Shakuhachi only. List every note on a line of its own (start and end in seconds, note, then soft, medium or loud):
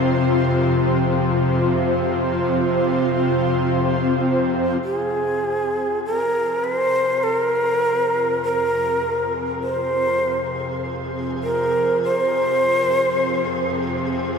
4.85 4.98 G4 medium
4.98 6.00 G#4 medium
6.06 6.66 A#4 medium
6.64 7.25 C5 loud
7.23 7.34 A4 loud
7.34 8.43 A#4 loud
8.43 9.32 A#4 loud
9.64 10.79 C5 loud
11.44 11.99 A#4 medium
12.04 13.80 C5 loud